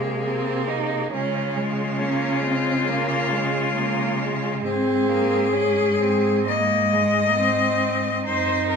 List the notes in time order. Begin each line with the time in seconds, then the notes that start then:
Already playing: C3 G#3 A#3 G#4
0.24 C4
0.67 D#4
1.11 C#3 G#3 C#4 F4
1.55 G#3
1.98 A#3 C#4
2.41 G#3 C4
2.88 A#3
3.31 G#3
3.75 A#3
4.20 G#3
4.64 G#2 C4 G#4
5.09 A#3
5.52 G#3 C#4
6.01 C4
6.47 G#3 A#3 D#5
6.92 G#3
7.35 C4
8.25 F#2 C4 D#4 C5
8.70 A#4